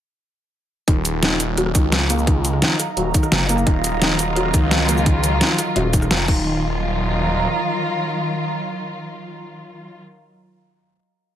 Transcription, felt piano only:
0.88 0.93 D#3 loud
1.23 1.36 D#3 medium
1.58 1.66 F#3 medium
1.75 1.84 D#3 loud
2.10 2.23 A#3 medium
2.27 2.33 D#3 loud
2.62 2.76 D#3 medium
2.97 3.06 F#3 medium
3.14 3.23 D#3 loud
3.49 3.63 A#3 medium
3.67 3.72 D#3 loud
4.02 4.15 D#3 medium
4.37 4.45 F#3 medium
4.54 4.63 D#3 loud
4.89 5.02 A#3 medium
5.06 5.12 D#3 loud
5.41 5.55 D#3 medium
5.76 5.85 F#3 medium
5.93 6.02 D#3 loud
6.28 6.61 D#3 medium

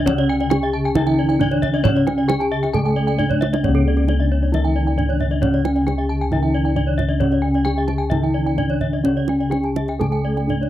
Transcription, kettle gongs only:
0.00 0.47 C#3 medium
0.06 1.36 C#4 medium
0.50 0.58 D4 soft
0.95 2.25 C#3 medium
1.40 1.48 D4 soft
1.83 3.14 C#4 medium
2.74 4.04 C#3 medium
3.18 3.26 D4 soft
3.64 4.94 C#4 soft
3.68 6.30 C#2 medium
4.09 4.16 D4 soft
4.98 5.06 D4 soft
5.41 6.72 C#4 medium
5.86 5.94 D4 soft
6.31 7.62 C#3 medium
6.76 6.84 D4 soft
7.21 8.53 C#4 medium
7.66 7.74 D4 soft
8.11 9.48 C#3 medium
8.58 8.66 D4 soft
9.04 10.45 C#4 medium
9.52 9.60 D4 soft
10.00 10.70 C#3 medium
10.49 10.57 D4 soft

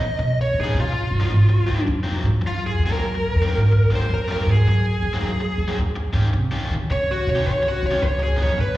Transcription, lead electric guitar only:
0.00 0.37 D#5 medium
0.41 0.57 C#5 medium
0.60 0.76 G#4 medium
0.80 1.86 F4 medium
2.47 2.63 F4 medium
2.67 2.82 G#4 medium
2.86 3.91 A#4 medium
3.95 4.12 C5 medium
4.14 4.30 A#4 medium
4.32 4.48 A#4 medium
4.51 4.68 G#4 medium
4.69 5.76 G#4 medium
6.92 7.09 C#5 loud
7.11 7.28 F#4 medium
7.29 7.46 C#5 medium
7.47 7.65 C#5 loud
7.68 7.85 F#4 medium
7.86 8.02 C#5 medium
8.03 8.21 C#5 loud
8.23 8.40 G#4 medium
8.42 8.59 C#5 medium
8.60 8.77 B4 medium

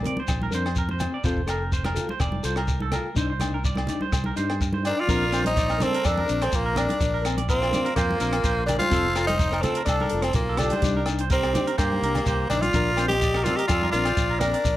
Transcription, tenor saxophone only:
4.86 5.02 D4 medium
5.00 5.46 F4 medium
5.47 5.84 D#4 loud
5.83 6.07 C4 medium
6.05 6.45 D4 medium
6.43 6.57 C4 medium
6.55 6.79 A#3 medium
6.78 7.25 D4 medium
7.49 7.94 C4 medium
7.96 8.64 A#3 medium
8.66 8.78 D4 loud
8.79 9.24 F4 loud
9.27 9.63 D#4 medium
9.62 9.84 C4 medium
9.85 10.24 D4 medium
10.23 10.34 C4 medium
10.35 10.60 A#3 medium
10.58 11.07 D4 medium
11.32 11.76 C4 medium
11.79 12.46 A#3 medium
12.49 12.64 D4 medium
12.62 13.08 F4 loud
13.08 13.45 G4 loud
13.44 13.58 F4 loud
13.56 13.67 G4 medium
13.67 13.91 F4 medium
13.91 14.41 F4 medium
14.40 14.77 D4 loud

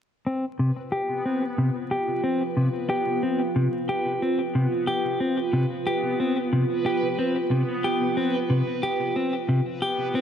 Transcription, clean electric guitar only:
0.26 0.44 C4 medium
0.59 0.70 C3 medium
0.92 1.24 G4 medium
1.26 1.43 C4 medium
1.58 1.69 C3 medium
1.91 2.23 G4 medium
2.24 2.42 C4 medium
2.57 2.68 C3 medium
2.90 3.21 G4 medium
3.23 3.41 C4 medium
3.56 3.67 C3 medium
3.89 4.21 G4 medium
4.22 4.40 C4 medium
4.55 4.66 C3 medium
4.87 5.19 G4 medium
5.20 5.39 C4 medium
5.53 5.64 C3 medium
5.87 6.18 G4 medium
6.20 6.38 C4 medium
6.53 6.64 C3 medium
6.86 7.17 G4 medium
7.19 7.37 C4 medium
7.51 7.62 C3 medium
7.84 8.16 G4 medium
8.17 8.35 C4 medium
8.50 8.61 C3 medium
8.83 9.15 G4 medium
9.16 9.34 C4 medium
9.49 9.60 C3 medium
9.82 10.14 G4 medium
10.15 10.21 C4 medium

